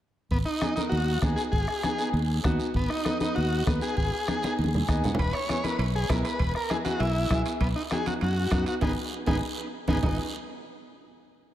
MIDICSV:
0, 0, Header, 1, 6, 480
1, 0, Start_track
1, 0, Key_signature, 5, "minor"
1, 0, Tempo, 304105
1, 486, Time_signature, 4, 2, 24, 8
1, 18216, End_track
2, 0, Start_track
2, 0, Title_t, "Transistor combo organ"
2, 0, Program_c, 0, 18
2, 494, Note_on_c, 0, 59, 81
2, 600, Note_off_c, 0, 59, 0
2, 719, Note_on_c, 0, 63, 80
2, 1171, Note_off_c, 0, 63, 0
2, 1194, Note_on_c, 0, 63, 85
2, 1305, Note_off_c, 0, 63, 0
2, 1409, Note_on_c, 0, 66, 80
2, 1876, Note_off_c, 0, 66, 0
2, 2149, Note_on_c, 0, 68, 87
2, 2263, Note_off_c, 0, 68, 0
2, 2393, Note_on_c, 0, 68, 90
2, 3304, Note_off_c, 0, 68, 0
2, 4362, Note_on_c, 0, 59, 75
2, 4572, Note_on_c, 0, 63, 85
2, 4576, Note_off_c, 0, 59, 0
2, 5024, Note_off_c, 0, 63, 0
2, 5067, Note_on_c, 0, 63, 81
2, 5288, Note_off_c, 0, 63, 0
2, 5290, Note_on_c, 0, 66, 87
2, 5743, Note_off_c, 0, 66, 0
2, 6031, Note_on_c, 0, 68, 93
2, 6246, Note_off_c, 0, 68, 0
2, 6265, Note_on_c, 0, 68, 91
2, 7162, Note_off_c, 0, 68, 0
2, 8193, Note_on_c, 0, 71, 104
2, 8413, Note_on_c, 0, 73, 94
2, 8435, Note_off_c, 0, 71, 0
2, 8897, Note_on_c, 0, 71, 90
2, 8912, Note_off_c, 0, 73, 0
2, 9109, Note_off_c, 0, 71, 0
2, 9128, Note_on_c, 0, 71, 84
2, 9239, Note_off_c, 0, 71, 0
2, 9400, Note_on_c, 0, 68, 86
2, 9614, Note_off_c, 0, 68, 0
2, 9620, Note_on_c, 0, 71, 100
2, 9728, Note_off_c, 0, 71, 0
2, 9859, Note_on_c, 0, 71, 86
2, 10305, Note_off_c, 0, 71, 0
2, 10363, Note_on_c, 0, 70, 89
2, 10585, Note_on_c, 0, 68, 92
2, 10597, Note_off_c, 0, 70, 0
2, 10691, Note_off_c, 0, 68, 0
2, 10807, Note_on_c, 0, 66, 88
2, 11043, Note_on_c, 0, 64, 84
2, 11059, Note_off_c, 0, 66, 0
2, 11717, Note_off_c, 0, 64, 0
2, 12017, Note_on_c, 0, 59, 80
2, 12124, Note_off_c, 0, 59, 0
2, 12245, Note_on_c, 0, 63, 81
2, 12354, Note_off_c, 0, 63, 0
2, 12513, Note_on_c, 0, 68, 88
2, 12726, Note_off_c, 0, 68, 0
2, 12739, Note_on_c, 0, 66, 84
2, 12845, Note_off_c, 0, 66, 0
2, 12982, Note_on_c, 0, 66, 78
2, 13644, Note_off_c, 0, 66, 0
2, 13707, Note_on_c, 0, 66, 76
2, 13810, Note_off_c, 0, 66, 0
2, 13925, Note_on_c, 0, 63, 94
2, 13929, Note_on_c, 0, 68, 96
2, 13937, Note_on_c, 0, 59, 98
2, 14079, Note_off_c, 0, 63, 0
2, 14081, Note_off_c, 0, 68, 0
2, 14086, Note_off_c, 0, 59, 0
2, 14634, Note_on_c, 0, 63, 88
2, 14635, Note_on_c, 0, 59, 85
2, 14638, Note_on_c, 0, 68, 98
2, 14792, Note_off_c, 0, 63, 0
2, 14793, Note_off_c, 0, 59, 0
2, 14794, Note_off_c, 0, 68, 0
2, 15604, Note_on_c, 0, 59, 89
2, 15607, Note_on_c, 0, 63, 89
2, 15608, Note_on_c, 0, 68, 89
2, 15757, Note_off_c, 0, 59, 0
2, 15759, Note_off_c, 0, 63, 0
2, 15759, Note_off_c, 0, 68, 0
2, 15829, Note_on_c, 0, 63, 79
2, 16058, Note_off_c, 0, 63, 0
2, 18216, End_track
3, 0, Start_track
3, 0, Title_t, "Upright piano"
3, 0, Program_c, 1, 0
3, 969, Note_on_c, 1, 59, 67
3, 978, Note_on_c, 1, 63, 66
3, 978, Note_on_c, 1, 68, 76
3, 1053, Note_off_c, 1, 59, 0
3, 1057, Note_off_c, 1, 63, 0
3, 1057, Note_off_c, 1, 68, 0
3, 1225, Note_on_c, 1, 59, 55
3, 1229, Note_on_c, 1, 63, 51
3, 1233, Note_on_c, 1, 70, 66
3, 1470, Note_off_c, 1, 59, 0
3, 1472, Note_off_c, 1, 63, 0
3, 1474, Note_off_c, 1, 70, 0
3, 1943, Note_on_c, 1, 59, 68
3, 1950, Note_on_c, 1, 63, 65
3, 1953, Note_on_c, 1, 68, 87
3, 2275, Note_off_c, 1, 59, 0
3, 2278, Note_off_c, 1, 63, 0
3, 2280, Note_off_c, 1, 68, 0
3, 2889, Note_on_c, 1, 59, 70
3, 2898, Note_on_c, 1, 63, 73
3, 2906, Note_on_c, 1, 68, 75
3, 2976, Note_off_c, 1, 59, 0
3, 2981, Note_off_c, 1, 63, 0
3, 2985, Note_off_c, 1, 68, 0
3, 3128, Note_on_c, 1, 59, 72
3, 3130, Note_on_c, 1, 63, 63
3, 3133, Note_on_c, 1, 68, 76
3, 3385, Note_off_c, 1, 59, 0
3, 3386, Note_off_c, 1, 63, 0
3, 3388, Note_off_c, 1, 68, 0
3, 3845, Note_on_c, 1, 59, 88
3, 3849, Note_on_c, 1, 63, 80
3, 3858, Note_on_c, 1, 66, 99
3, 4189, Note_off_c, 1, 59, 0
3, 4191, Note_off_c, 1, 63, 0
3, 4195, Note_off_c, 1, 66, 0
3, 4812, Note_on_c, 1, 59, 66
3, 4821, Note_on_c, 1, 63, 64
3, 4825, Note_on_c, 1, 71, 78
3, 4901, Note_off_c, 1, 59, 0
3, 4906, Note_off_c, 1, 63, 0
3, 4908, Note_off_c, 1, 71, 0
3, 5055, Note_on_c, 1, 59, 61
3, 5060, Note_on_c, 1, 63, 54
3, 5063, Note_on_c, 1, 71, 70
3, 5311, Note_off_c, 1, 59, 0
3, 5313, Note_off_c, 1, 63, 0
3, 5315, Note_off_c, 1, 71, 0
3, 5781, Note_on_c, 1, 59, 76
3, 5796, Note_on_c, 1, 63, 64
3, 5796, Note_on_c, 1, 71, 81
3, 6119, Note_off_c, 1, 59, 0
3, 6126, Note_off_c, 1, 63, 0
3, 6126, Note_off_c, 1, 71, 0
3, 6755, Note_on_c, 1, 59, 70
3, 6756, Note_on_c, 1, 63, 68
3, 6768, Note_on_c, 1, 68, 77
3, 6834, Note_off_c, 1, 59, 0
3, 6834, Note_off_c, 1, 63, 0
3, 6840, Note_off_c, 1, 68, 0
3, 6985, Note_on_c, 1, 59, 66
3, 7000, Note_on_c, 1, 63, 65
3, 7000, Note_on_c, 1, 68, 69
3, 7237, Note_off_c, 1, 59, 0
3, 7244, Note_off_c, 1, 63, 0
3, 7244, Note_off_c, 1, 68, 0
3, 7490, Note_on_c, 1, 80, 66
3, 7701, Note_off_c, 1, 80, 0
3, 7704, Note_on_c, 1, 59, 81
3, 7710, Note_on_c, 1, 63, 80
3, 7710, Note_on_c, 1, 75, 75
3, 7724, Note_on_c, 1, 68, 90
3, 7930, Note_off_c, 1, 75, 0
3, 7950, Note_on_c, 1, 78, 72
3, 8040, Note_off_c, 1, 59, 0
3, 8043, Note_off_c, 1, 63, 0
3, 8050, Note_off_c, 1, 68, 0
3, 8170, Note_off_c, 1, 78, 0
3, 8652, Note_on_c, 1, 59, 72
3, 8662, Note_on_c, 1, 64, 64
3, 8670, Note_on_c, 1, 68, 81
3, 8742, Note_off_c, 1, 59, 0
3, 8747, Note_off_c, 1, 64, 0
3, 8751, Note_off_c, 1, 68, 0
3, 8898, Note_on_c, 1, 59, 63
3, 8906, Note_on_c, 1, 64, 51
3, 8907, Note_on_c, 1, 70, 61
3, 9152, Note_off_c, 1, 59, 0
3, 9156, Note_off_c, 1, 64, 0
3, 9156, Note_off_c, 1, 70, 0
3, 9620, Note_on_c, 1, 59, 77
3, 9621, Note_on_c, 1, 64, 68
3, 9630, Note_on_c, 1, 70, 85
3, 9956, Note_off_c, 1, 59, 0
3, 9956, Note_off_c, 1, 64, 0
3, 9961, Note_off_c, 1, 70, 0
3, 10584, Note_on_c, 1, 59, 69
3, 10585, Note_on_c, 1, 64, 73
3, 10590, Note_on_c, 1, 68, 82
3, 10665, Note_off_c, 1, 59, 0
3, 10666, Note_off_c, 1, 64, 0
3, 10668, Note_off_c, 1, 68, 0
3, 10831, Note_on_c, 1, 59, 64
3, 10833, Note_on_c, 1, 64, 48
3, 10838, Note_on_c, 1, 68, 64
3, 11076, Note_off_c, 1, 59, 0
3, 11077, Note_off_c, 1, 64, 0
3, 11079, Note_off_c, 1, 68, 0
3, 11537, Note_on_c, 1, 59, 70
3, 11545, Note_on_c, 1, 64, 73
3, 11554, Note_on_c, 1, 68, 81
3, 11871, Note_off_c, 1, 59, 0
3, 11875, Note_off_c, 1, 64, 0
3, 11880, Note_off_c, 1, 68, 0
3, 12483, Note_on_c, 1, 59, 72
3, 12491, Note_on_c, 1, 63, 69
3, 12498, Note_on_c, 1, 66, 80
3, 12571, Note_off_c, 1, 59, 0
3, 12575, Note_off_c, 1, 63, 0
3, 12579, Note_off_c, 1, 66, 0
3, 12725, Note_on_c, 1, 59, 56
3, 12733, Note_on_c, 1, 63, 57
3, 12739, Note_on_c, 1, 66, 68
3, 12980, Note_off_c, 1, 59, 0
3, 12983, Note_off_c, 1, 63, 0
3, 12986, Note_off_c, 1, 66, 0
3, 13436, Note_on_c, 1, 59, 78
3, 13443, Note_on_c, 1, 66, 76
3, 13447, Note_on_c, 1, 63, 68
3, 13778, Note_off_c, 1, 59, 0
3, 13781, Note_off_c, 1, 66, 0
3, 13783, Note_off_c, 1, 63, 0
3, 13925, Note_on_c, 1, 68, 82
3, 13931, Note_on_c, 1, 59, 92
3, 13934, Note_on_c, 1, 63, 94
3, 14079, Note_off_c, 1, 68, 0
3, 14083, Note_off_c, 1, 59, 0
3, 14085, Note_off_c, 1, 63, 0
3, 14636, Note_on_c, 1, 63, 81
3, 14636, Note_on_c, 1, 68, 87
3, 14641, Note_on_c, 1, 59, 85
3, 14793, Note_off_c, 1, 63, 0
3, 14793, Note_off_c, 1, 68, 0
3, 14796, Note_off_c, 1, 59, 0
3, 15596, Note_on_c, 1, 59, 99
3, 15600, Note_on_c, 1, 68, 104
3, 15601, Note_on_c, 1, 63, 92
3, 15752, Note_off_c, 1, 59, 0
3, 15755, Note_off_c, 1, 63, 0
3, 15755, Note_off_c, 1, 68, 0
3, 15857, Note_on_c, 1, 63, 67
3, 15861, Note_on_c, 1, 59, 66
3, 15861, Note_on_c, 1, 68, 76
3, 16073, Note_off_c, 1, 63, 0
3, 16075, Note_off_c, 1, 59, 0
3, 16075, Note_off_c, 1, 68, 0
3, 18216, End_track
4, 0, Start_track
4, 0, Title_t, "Fingered electric bass"
4, 0, Program_c, 2, 33
4, 490, Note_on_c, 2, 32, 97
4, 681, Note_off_c, 2, 32, 0
4, 1448, Note_on_c, 2, 39, 95
4, 1834, Note_off_c, 2, 39, 0
4, 1927, Note_on_c, 2, 39, 97
4, 2122, Note_off_c, 2, 39, 0
4, 2405, Note_on_c, 2, 32, 96
4, 2601, Note_off_c, 2, 32, 0
4, 3367, Note_on_c, 2, 39, 108
4, 3756, Note_off_c, 2, 39, 0
4, 3859, Note_on_c, 2, 39, 96
4, 4051, Note_off_c, 2, 39, 0
4, 4328, Note_on_c, 2, 32, 99
4, 4525, Note_off_c, 2, 32, 0
4, 5320, Note_on_c, 2, 39, 90
4, 5698, Note_off_c, 2, 39, 0
4, 5789, Note_on_c, 2, 39, 93
4, 5979, Note_off_c, 2, 39, 0
4, 6272, Note_on_c, 2, 32, 98
4, 6461, Note_off_c, 2, 32, 0
4, 7240, Note_on_c, 2, 39, 87
4, 7618, Note_off_c, 2, 39, 0
4, 7709, Note_on_c, 2, 39, 98
4, 7899, Note_off_c, 2, 39, 0
4, 8188, Note_on_c, 2, 28, 97
4, 8378, Note_off_c, 2, 28, 0
4, 9132, Note_on_c, 2, 35, 102
4, 9519, Note_off_c, 2, 35, 0
4, 9618, Note_on_c, 2, 35, 93
4, 9811, Note_off_c, 2, 35, 0
4, 10095, Note_on_c, 2, 28, 100
4, 10288, Note_off_c, 2, 28, 0
4, 11049, Note_on_c, 2, 35, 96
4, 11435, Note_off_c, 2, 35, 0
4, 11526, Note_on_c, 2, 35, 87
4, 11721, Note_off_c, 2, 35, 0
4, 12002, Note_on_c, 2, 35, 99
4, 12198, Note_off_c, 2, 35, 0
4, 12974, Note_on_c, 2, 42, 90
4, 13356, Note_off_c, 2, 42, 0
4, 13435, Note_on_c, 2, 42, 87
4, 13632, Note_off_c, 2, 42, 0
4, 13916, Note_on_c, 2, 32, 96
4, 14100, Note_off_c, 2, 32, 0
4, 14640, Note_on_c, 2, 32, 89
4, 14821, Note_off_c, 2, 32, 0
4, 15594, Note_on_c, 2, 32, 78
4, 15776, Note_off_c, 2, 32, 0
4, 15833, Note_on_c, 2, 32, 94
4, 16060, Note_off_c, 2, 32, 0
4, 18216, End_track
5, 0, Start_track
5, 0, Title_t, "Two-headed folk drums"
5, 486, Note_on_c, 9, 36, 72
5, 644, Note_off_c, 9, 36, 0
5, 971, Note_on_c, 9, 37, 83
5, 1129, Note_off_c, 9, 37, 0
5, 1927, Note_on_c, 9, 36, 84
5, 1927, Note_on_c, 9, 37, 73
5, 2084, Note_off_c, 9, 36, 0
5, 2085, Note_off_c, 9, 37, 0
5, 2408, Note_on_c, 9, 36, 76
5, 2566, Note_off_c, 9, 36, 0
5, 2650, Note_on_c, 9, 37, 66
5, 2808, Note_off_c, 9, 37, 0
5, 2894, Note_on_c, 9, 37, 78
5, 3052, Note_off_c, 9, 37, 0
5, 3854, Note_on_c, 9, 36, 83
5, 3856, Note_on_c, 9, 37, 86
5, 4011, Note_off_c, 9, 36, 0
5, 4014, Note_off_c, 9, 37, 0
5, 4334, Note_on_c, 9, 36, 70
5, 4492, Note_off_c, 9, 36, 0
5, 4577, Note_on_c, 9, 37, 63
5, 4735, Note_off_c, 9, 37, 0
5, 4817, Note_on_c, 9, 37, 80
5, 4975, Note_off_c, 9, 37, 0
5, 5788, Note_on_c, 9, 36, 77
5, 5796, Note_on_c, 9, 37, 83
5, 5946, Note_off_c, 9, 36, 0
5, 5954, Note_off_c, 9, 37, 0
5, 6272, Note_on_c, 9, 36, 71
5, 6429, Note_off_c, 9, 36, 0
5, 6756, Note_on_c, 9, 37, 87
5, 6913, Note_off_c, 9, 37, 0
5, 7712, Note_on_c, 9, 36, 84
5, 7712, Note_on_c, 9, 37, 85
5, 7870, Note_off_c, 9, 36, 0
5, 7870, Note_off_c, 9, 37, 0
5, 8192, Note_on_c, 9, 36, 68
5, 8350, Note_off_c, 9, 36, 0
5, 8438, Note_on_c, 9, 37, 61
5, 8596, Note_off_c, 9, 37, 0
5, 8671, Note_on_c, 9, 37, 75
5, 8829, Note_off_c, 9, 37, 0
5, 9619, Note_on_c, 9, 36, 79
5, 9621, Note_on_c, 9, 37, 80
5, 9777, Note_off_c, 9, 36, 0
5, 9779, Note_off_c, 9, 37, 0
5, 10097, Note_on_c, 9, 36, 73
5, 10254, Note_off_c, 9, 36, 0
5, 10339, Note_on_c, 9, 37, 63
5, 10497, Note_off_c, 9, 37, 0
5, 10575, Note_on_c, 9, 37, 78
5, 10733, Note_off_c, 9, 37, 0
5, 11528, Note_on_c, 9, 36, 86
5, 11531, Note_on_c, 9, 37, 83
5, 11686, Note_off_c, 9, 36, 0
5, 11689, Note_off_c, 9, 37, 0
5, 12006, Note_on_c, 9, 36, 75
5, 12164, Note_off_c, 9, 36, 0
5, 12483, Note_on_c, 9, 37, 84
5, 12641, Note_off_c, 9, 37, 0
5, 13439, Note_on_c, 9, 36, 80
5, 13440, Note_on_c, 9, 37, 88
5, 13597, Note_off_c, 9, 36, 0
5, 13598, Note_off_c, 9, 37, 0
5, 13918, Note_on_c, 9, 36, 89
5, 14076, Note_off_c, 9, 36, 0
5, 14635, Note_on_c, 9, 36, 93
5, 14793, Note_off_c, 9, 36, 0
5, 15592, Note_on_c, 9, 36, 91
5, 15750, Note_off_c, 9, 36, 0
5, 15832, Note_on_c, 9, 36, 95
5, 15989, Note_off_c, 9, 36, 0
5, 18216, End_track
6, 0, Start_track
6, 0, Title_t, "Drums"
6, 483, Note_on_c, 9, 74, 64
6, 641, Note_off_c, 9, 74, 0
6, 964, Note_on_c, 9, 73, 62
6, 974, Note_on_c, 9, 63, 75
6, 1122, Note_off_c, 9, 73, 0
6, 1132, Note_off_c, 9, 63, 0
6, 1208, Note_on_c, 9, 73, 67
6, 1217, Note_on_c, 9, 63, 65
6, 1366, Note_off_c, 9, 73, 0
6, 1375, Note_off_c, 9, 63, 0
6, 1451, Note_on_c, 9, 74, 66
6, 1608, Note_off_c, 9, 74, 0
6, 1932, Note_on_c, 9, 73, 64
6, 1941, Note_on_c, 9, 63, 74
6, 2090, Note_off_c, 9, 73, 0
6, 2099, Note_off_c, 9, 63, 0
6, 2172, Note_on_c, 9, 73, 68
6, 2330, Note_off_c, 9, 73, 0
6, 2414, Note_on_c, 9, 74, 57
6, 2572, Note_off_c, 9, 74, 0
6, 2897, Note_on_c, 9, 73, 62
6, 2902, Note_on_c, 9, 63, 79
6, 3055, Note_off_c, 9, 73, 0
6, 3060, Note_off_c, 9, 63, 0
6, 3132, Note_on_c, 9, 73, 63
6, 3290, Note_off_c, 9, 73, 0
6, 3378, Note_on_c, 9, 74, 61
6, 3536, Note_off_c, 9, 74, 0
6, 3848, Note_on_c, 9, 73, 62
6, 3859, Note_on_c, 9, 63, 78
6, 4006, Note_off_c, 9, 73, 0
6, 4017, Note_off_c, 9, 63, 0
6, 4097, Note_on_c, 9, 73, 73
6, 4255, Note_off_c, 9, 73, 0
6, 4329, Note_on_c, 9, 74, 63
6, 4487, Note_off_c, 9, 74, 0
6, 4824, Note_on_c, 9, 63, 81
6, 4825, Note_on_c, 9, 73, 61
6, 4982, Note_off_c, 9, 63, 0
6, 4983, Note_off_c, 9, 73, 0
6, 5057, Note_on_c, 9, 73, 71
6, 5060, Note_on_c, 9, 63, 67
6, 5215, Note_off_c, 9, 73, 0
6, 5218, Note_off_c, 9, 63, 0
6, 5302, Note_on_c, 9, 74, 67
6, 5460, Note_off_c, 9, 74, 0
6, 5790, Note_on_c, 9, 73, 62
6, 5793, Note_on_c, 9, 63, 82
6, 5948, Note_off_c, 9, 73, 0
6, 5951, Note_off_c, 9, 63, 0
6, 6020, Note_on_c, 9, 73, 69
6, 6178, Note_off_c, 9, 73, 0
6, 6263, Note_on_c, 9, 74, 60
6, 6421, Note_off_c, 9, 74, 0
6, 6740, Note_on_c, 9, 73, 66
6, 6758, Note_on_c, 9, 63, 80
6, 6897, Note_off_c, 9, 73, 0
6, 6916, Note_off_c, 9, 63, 0
6, 6988, Note_on_c, 9, 73, 62
6, 7008, Note_on_c, 9, 63, 82
6, 7145, Note_off_c, 9, 73, 0
6, 7166, Note_off_c, 9, 63, 0
6, 7240, Note_on_c, 9, 74, 60
6, 7322, Note_on_c, 9, 63, 75
6, 7397, Note_off_c, 9, 74, 0
6, 7480, Note_off_c, 9, 63, 0
6, 7494, Note_on_c, 9, 64, 82
6, 7652, Note_off_c, 9, 64, 0
6, 7711, Note_on_c, 9, 73, 62
6, 7869, Note_off_c, 9, 73, 0
6, 7952, Note_on_c, 9, 73, 65
6, 7970, Note_on_c, 9, 64, 96
6, 8110, Note_off_c, 9, 73, 0
6, 8123, Note_off_c, 9, 64, 0
6, 8123, Note_on_c, 9, 64, 93
6, 8195, Note_on_c, 9, 74, 56
6, 8197, Note_on_c, 9, 65, 63
6, 8280, Note_off_c, 9, 64, 0
6, 8352, Note_off_c, 9, 74, 0
6, 8355, Note_off_c, 9, 65, 0
6, 8665, Note_on_c, 9, 73, 68
6, 8677, Note_on_c, 9, 63, 72
6, 8680, Note_on_c, 9, 65, 62
6, 8823, Note_off_c, 9, 73, 0
6, 8835, Note_off_c, 9, 63, 0
6, 8838, Note_off_c, 9, 65, 0
6, 8905, Note_on_c, 9, 73, 64
6, 8906, Note_on_c, 9, 63, 64
6, 8913, Note_on_c, 9, 65, 58
6, 9063, Note_off_c, 9, 73, 0
6, 9064, Note_off_c, 9, 63, 0
6, 9071, Note_off_c, 9, 65, 0
6, 9144, Note_on_c, 9, 65, 73
6, 9145, Note_on_c, 9, 74, 67
6, 9301, Note_off_c, 9, 65, 0
6, 9303, Note_off_c, 9, 74, 0
6, 9622, Note_on_c, 9, 65, 62
6, 9622, Note_on_c, 9, 66, 63
6, 9625, Note_on_c, 9, 63, 86
6, 9625, Note_on_c, 9, 73, 68
6, 9779, Note_off_c, 9, 65, 0
6, 9779, Note_off_c, 9, 66, 0
6, 9783, Note_off_c, 9, 63, 0
6, 9783, Note_off_c, 9, 73, 0
6, 9861, Note_on_c, 9, 73, 71
6, 9863, Note_on_c, 9, 65, 66
6, 10019, Note_off_c, 9, 73, 0
6, 10021, Note_off_c, 9, 65, 0
6, 10093, Note_on_c, 9, 65, 63
6, 10093, Note_on_c, 9, 74, 60
6, 10250, Note_off_c, 9, 74, 0
6, 10251, Note_off_c, 9, 65, 0
6, 10570, Note_on_c, 9, 73, 65
6, 10577, Note_on_c, 9, 65, 58
6, 10586, Note_on_c, 9, 63, 72
6, 10728, Note_off_c, 9, 73, 0
6, 10735, Note_off_c, 9, 65, 0
6, 10744, Note_off_c, 9, 63, 0
6, 10807, Note_on_c, 9, 73, 62
6, 10813, Note_on_c, 9, 65, 67
6, 10823, Note_on_c, 9, 63, 69
6, 10965, Note_off_c, 9, 73, 0
6, 10970, Note_off_c, 9, 65, 0
6, 10981, Note_off_c, 9, 63, 0
6, 11049, Note_on_c, 9, 74, 70
6, 11054, Note_on_c, 9, 65, 73
6, 11207, Note_off_c, 9, 74, 0
6, 11212, Note_off_c, 9, 65, 0
6, 11530, Note_on_c, 9, 65, 62
6, 11532, Note_on_c, 9, 73, 58
6, 11545, Note_on_c, 9, 63, 78
6, 11688, Note_off_c, 9, 65, 0
6, 11690, Note_off_c, 9, 73, 0
6, 11703, Note_off_c, 9, 63, 0
6, 11767, Note_on_c, 9, 73, 73
6, 11773, Note_on_c, 9, 65, 60
6, 11925, Note_off_c, 9, 73, 0
6, 11931, Note_off_c, 9, 65, 0
6, 12005, Note_on_c, 9, 65, 71
6, 12010, Note_on_c, 9, 74, 58
6, 12163, Note_off_c, 9, 65, 0
6, 12168, Note_off_c, 9, 74, 0
6, 12472, Note_on_c, 9, 73, 63
6, 12494, Note_on_c, 9, 65, 61
6, 12495, Note_on_c, 9, 63, 68
6, 12630, Note_off_c, 9, 73, 0
6, 12651, Note_off_c, 9, 65, 0
6, 12653, Note_off_c, 9, 63, 0
6, 12725, Note_on_c, 9, 73, 65
6, 12726, Note_on_c, 9, 65, 62
6, 12736, Note_on_c, 9, 63, 64
6, 12883, Note_off_c, 9, 73, 0
6, 12884, Note_off_c, 9, 65, 0
6, 12894, Note_off_c, 9, 63, 0
6, 12961, Note_on_c, 9, 65, 62
6, 12962, Note_on_c, 9, 74, 64
6, 13119, Note_off_c, 9, 65, 0
6, 13120, Note_off_c, 9, 74, 0
6, 13430, Note_on_c, 9, 65, 60
6, 13445, Note_on_c, 9, 63, 75
6, 13445, Note_on_c, 9, 73, 58
6, 13588, Note_off_c, 9, 65, 0
6, 13603, Note_off_c, 9, 63, 0
6, 13603, Note_off_c, 9, 73, 0
6, 13673, Note_on_c, 9, 65, 62
6, 13675, Note_on_c, 9, 73, 74
6, 13831, Note_off_c, 9, 65, 0
6, 13833, Note_off_c, 9, 73, 0
6, 13909, Note_on_c, 9, 65, 92
6, 13912, Note_on_c, 9, 74, 95
6, 13923, Note_on_c, 9, 63, 92
6, 14067, Note_off_c, 9, 65, 0
6, 14070, Note_off_c, 9, 74, 0
6, 14081, Note_off_c, 9, 63, 0
6, 14623, Note_on_c, 9, 74, 95
6, 14626, Note_on_c, 9, 65, 88
6, 14637, Note_on_c, 9, 63, 83
6, 14781, Note_off_c, 9, 74, 0
6, 14784, Note_off_c, 9, 65, 0
6, 14795, Note_off_c, 9, 63, 0
6, 15587, Note_on_c, 9, 74, 93
6, 15590, Note_on_c, 9, 63, 97
6, 15591, Note_on_c, 9, 65, 86
6, 15745, Note_off_c, 9, 74, 0
6, 15748, Note_off_c, 9, 63, 0
6, 15749, Note_off_c, 9, 65, 0
6, 15829, Note_on_c, 9, 66, 91
6, 15832, Note_on_c, 9, 74, 84
6, 15836, Note_on_c, 9, 64, 94
6, 15987, Note_off_c, 9, 66, 0
6, 15990, Note_off_c, 9, 74, 0
6, 15993, Note_off_c, 9, 64, 0
6, 18216, End_track
0, 0, End_of_file